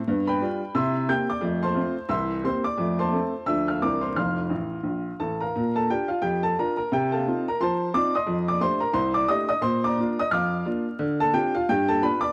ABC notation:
X:1
M:4/4
L:1/8
Q:"Swing" 1/4=175
K:F
V:1 name="Upright piano"
z [=Bg=b]3 [ec'e']2 [gg'] [dd'] | z [cac']3 [ec'e']2 [cc'] [dd']- | [dd'] [cac']3 [ee'] [ff'] [dd'] [cc'] | [fc'f']6 [Aa] [Bfb]- |
[K:Bb] [Bfb] [Aa] [Gg] [Ff] [Gg] [Aa] [Bb] [Bb] | [Gg] [Afa]2 [Bb] [cac']2 [dd'] [ec'e']- | [ec'e'] [dd'] [cc'] [Bb] [cc'] [dd'] [ee'] [ee'] | [cc'] [dbd']2 [ee'] [fd'f']2 z2 |
[K:Dm] z [Aa] [Gg] [Ff] [Gg] [Aa] [=B=b] [dd'] |]
V:2 name="Upright piano"
[G,,=B,]2 [G,DF]2 [C,E]2 [_B,CG]2 | [F,,A,]2 [A,CF]2 [C,,E,]2 [B,CG]2 | [F,,A,]2 [A,CA]2 [D,,F,A,DA]2 [C,,E,CEB]2 | [F,,,F,,]2 A,,,2 B,,,2 A,,,2 |
[K:Bb] B,,2 [DF]2 F,,2 [DF]2 | C,2 [CEF]2 F,2 [CEF]2 | F,,2 [A,DG]2 C,,2 [A,DG]2 | B,,2 [B,DF]2 F,,2 [B,DF]2 |
[K:Dm] D,2 [CDF]2 G,,2 [=B,DF]2 |]